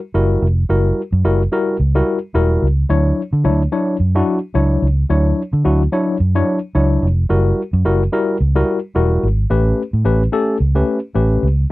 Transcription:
0.14 F#1 G3 E4 F#4 A#4
0.42 F1
0.69 F#1 G3 E4 F#4 A#4
1.12 F#2
1.24 F#1 G3 E4 F#4 A#4
1.52 G3 E4 F#4 A#4
1.80 C#2
1.95 G3 E4 F#4 A#4
2.34 E1 G3 E4 F#4 A#4
2.62 C#2
2.89 D2 F#3 D4 E4 C#5
3.33 D3
3.44 D2 F#3 D4 E4 C#5
3.72 F#3 D4 E4 C#5
4.00 F#2
4.15 F#3 D4 E4 F#4
4.54 C#2 F#3 D4 E4 C#5
4.82 C#2
5.09 D2 F#3 D4 E4 C#5
5.53 D3
5.65 D2 F#3 D4 E4 F#4
5.92 F#3 D4 E4 C#5
6.20 F#2
6.35 F#3 D4 E4 C#5
6.75 C#2 F#3 D4 E4 C#5
7.03 F1
7.29 F#1 G3 E4 F#4 A#4
7.73 F#2
7.85 F#1 G3 E4 F#4 A#4
8.12 G3 E4 F#4 A#4
8.40 C#2
8.55 G3 E4 F#4 A#4
8.95 E1 G3 E4 F#4 A#4
9.23 G#1
9.50 A1 A3 C#4 G4 B4
9.93 A2
10.05 A1 A3 C#4 G4 B4
10.32 A3 C#4 G4 A4
10.60 C#2
10.75 A3 C#4 G4 B4
11.15 A1 A3 C#4 G4 B4
11.43 C#2

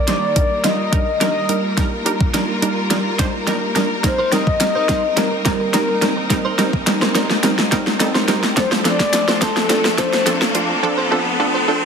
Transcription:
Already playing: D#3 G3 A#3 A#4 D5
0.08 G3 D4 D#4 C5, snare, closed hi-hat
0.36 G3 D4 D#4 A#4, kick, closed hi-hat
0.64 G3 D4 D#4 F4 D#5, snare, closed hi-hat
0.92 G3 D4 D#4 A#4, kick, closed hi-hat
1.21 G3 D4 D#4 A#4 D#5, snare, closed hi-hat
1.49 G3 D4 D#4 F4 A#4, closed hi-hat
1.77 G3 D4 D#4 A#4, kick, snare, closed hi-hat
2.06 G3 D4 D#4 A#4, closed hi-hat
2.21 kick
2.34 G3 D4 D#4 A#4, snare, closed hi-hat
2.62 G3 D4 D#4 A#4, closed hi-hat
2.90 G3 D4 D#4 A#4, snare, closed hi-hat
3.19 G3 D4 D#4 C5, kick, snare, closed hi-hat
3.47 G3 D4 D#4 A#4, snare, closed hi-hat
3.75 G3 D4 D#4 A#4, snare, closed hi-hat
4.04 G3 C4 D#4 A#4 C5, muted clean electric guitar stroke, kick, snare, closed hi-hat, riser
4.18 D#4 A#4 C5
4.32 G3 C4 D#4 A#4 C5 D#5, snare, closed hi-hat
4.47 kick
4.60 G3 C4 D#4 A#4, muted clean electric guitar stroke, snare, clap, closed hi-hat
4.75 D#4 A#4 C5
4.88 G3 C4 D#4 A#4 C5, kick, snare, closed hi-hat
5.04 muted clean electric guitar stroke
5.17 G3 C4 D#4 A#4, muted clean electric guitar stroke, snare, closed hi-hat
5.32 muted clean electric guitar stroke
5.45 G3 C4 D#4 A#4, kick, snare, closed hi-hat
5.60 muted clean electric guitar stroke
5.73 G3 C4 D#4 A#4, muted clean electric guitar stroke, snare, clap, closed hi-hat
5.88 muted clean electric guitar stroke
6.02 G3 C4 D#4 A#4, snare, closed hi-hat
6.17 muted clean electric guitar stroke
6.30 G3 C4 D#4 A#4, muted clean electric guitar stroke, kick, snare, closed hi-hat
6.45 D#4 A#4 C5
6.58 G3 C4 D#4 A#4 C5, snare, closed hi-hat
6.73 muted clean electric guitar stroke, kick
6.87 G3 C4 D#4 A#4, muted clean electric guitar stroke, snare, clap, closed hi-hat
7.01 D#4 A#4 C5, snare
7.15 G3 C4 D#4 A#4 C5, snare, closed hi-hat
7.30 muted clean electric guitar stroke, snare
7.43 G3 C4 D#4 A#4, muted clean electric guitar stroke, snare, closed hi-hat
7.58 muted clean electric guitar stroke, snare
7.72 G3 C4 D#4 A#4, kick, snare, closed hi-hat
7.86 muted clean electric guitar stroke, snare
8.00 G3 C4 D#4 A4, muted clean electric guitar stroke, snare, clap, closed hi-hat
8.15 D#4 A#4 C5, snare
8.28 G3 C4 D#4 A#4 C5, snare, closed hi-hat
8.43 muted clean electric guitar stroke, snare
8.56 F3 A3 C4 D4 A4 C5, muted clean electric guitar stroke, kick, snare, closed hi-hat
8.71 F4 A4 C5, snare
8.85 F3 C4 D4 F4 A4 C5 D5, snare, closed hi-hat
9.00 kick, snare
9.13 F3 C4 D4 A4, muted clean electric guitar stroke, snare, clap, closed hi-hat
9.28 F4 A4 C5, snare
9.41 F3 C4 D4 F4 A4 C5, kick, snare, closed hi-hat
9.56 muted clean electric guitar stroke, snare
9.70 F3 C4 D4 A4, muted clean electric guitar stroke, snare, closed hi-hat
9.85 muted clean electric guitar stroke, snare
9.98 F3 C4 D4 A4 C5, kick, snare, closed hi-hat
10.13 muted clean electric guitar stroke, snare
10.26 F3 C4 D4 A4, muted clean electric guitar stroke, snare, clap, closed hi-hat
10.41 muted clean electric guitar stroke, snare
10.55 F3 C4 D4 F4, closed hi-hat
10.70 muted clean electric guitar stroke
10.83 F3 C4 D4 A4, muted clean electric guitar stroke
10.98 F4 A4 C5
11.11 F3 C4 D4 F4 A4 C5
11.26 muted clean electric guitar stroke
11.39 F3 C4 D4 A4, muted clean electric guitar stroke
11.54 F4 A4 C5
11.67 F3 C4 D4 F4 A4 C5

